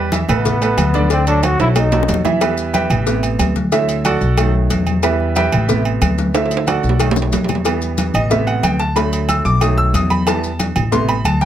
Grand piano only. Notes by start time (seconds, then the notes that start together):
0.12 E3 E4 E5
0.29 A3 A4 B4
0.61 A3 A4 B4
0.94 D3 D4 D5
1.10 D3 D4 D5
1.27 F#3 F#4 A4
1.60 F#3 F#4 A4
1.92 F#3 F#4 A4
2.25 E3 E4 E5
2.41 E3 G3 B3 E4 G4 B4 E5
2.74 G4 B4 E5 G5
3.06 C3 A3 B3
3.72 D3 F#3 A3 E4 E5
4.05 F#4 A4 D5 F#5
4.37 D#3 F#3 A3
5.03 E3 G3 B3 E4 G4 B4 E5
5.36 G4 B4 E5 G5
5.68 C3 A3 B3
6.34 D3 F#3 A3 E4 E5
6.67 F#4 A4 D5 F#5
7.00 D#3 F#3 A3
7.65 E3 G3 B3
8.15 D#5
8.30 C3 A3 B3 E5
8.47 F#5
8.63 G5
8.79 A5
8.95 D3 F#3 A3 B5
9.29 E6
9.45 D6
9.61 D#3 F#3 A3 D#6
9.78 E6
9.94 D#6
10.10 B5
10.26 E3 G3 B3 A5
10.91 C3 A3 B3 C6
11.08 B5
11.25 A5
11.41 G5